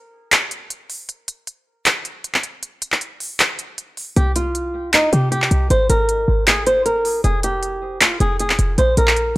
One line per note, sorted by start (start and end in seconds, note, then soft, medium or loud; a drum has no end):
0.32 clap loud
0.32 closed hi-hat medium
0.51 closed hi-hat medium
0.70 closed hi-hat medium
0.90 open hi-hat medium
1.09 closed hi-hat medium
1.28 closed hi-hat medium
1.47 closed hi-hat medium
1.86 clap loud
1.86 closed hi-hat medium
2.05 closed hi-hat medium
2.24 closed hi-hat medium
2.34 clap medium
2.43 closed hi-hat medium
2.63 closed hi-hat medium
2.82 closed hi-hat medium
2.92 clap medium
3.01 closed hi-hat medium
3.20 open hi-hat medium
3.40 clap loud
3.40 closed hi-hat medium
3.59 closed hi-hat medium
3.78 closed hi-hat medium
3.97 open hi-hat medium
4.16 5.09 C2 loud
4.16 4.31 G4 loud
4.16 closed hi-hat medium
4.36 4.90 F4 medium
4.36 closed hi-hat medium
4.55 closed hi-hat medium
4.93 5.08 D#4 medium
4.93 clap loud
4.93 closed hi-hat medium
5.13 5.50 C3 loud
5.13 5.28 G4 medium
5.13 closed hi-hat medium
5.32 5.68 G4 medium
5.32 closed hi-hat medium
5.42 clap medium
5.51 5.70 C2 loud
5.51 closed hi-hat medium
5.70 5.89 G#1 loud
5.70 5.85 C5 loud
5.70 closed hi-hat medium
5.90 6.27 G#1 loud
5.90 6.44 A#4 medium
5.90 closed hi-hat medium
6.09 closed hi-hat medium
6.28 6.97 G#1 loud
6.47 6.62 G#4 medium
6.47 clap loud
6.47 closed hi-hat medium
6.67 6.81 C5 medium
6.67 closed hi-hat medium
6.86 7.22 A#4 medium
6.86 closed hi-hat medium
6.96 7.12 G1 loud
7.05 open hi-hat medium
7.10 7.23 G#1 loud
7.24 8.17 F1 loud
7.24 7.39 G#4 loud
7.24 closed hi-hat medium
7.43 7.98 G4 medium
7.43 closed hi-hat medium
7.63 closed hi-hat medium
8.01 8.16 F4 medium
8.01 clap loud
8.01 closed hi-hat medium
8.20 8.57 F1 loud
8.20 8.35 G#4 medium
8.20 closed hi-hat medium
8.40 8.76 G#4 medium
8.40 closed hi-hat medium
8.50 clap medium
8.59 8.77 F1 loud
8.59 closed hi-hat medium
8.78 8.96 A#1 loud
8.78 8.93 C5 medium
8.78 closed hi-hat medium
8.97 9.34 A#1 loud
8.97 9.38 A#4 medium
8.97 closed hi-hat medium
9.07 clap medium
9.16 closed hi-hat medium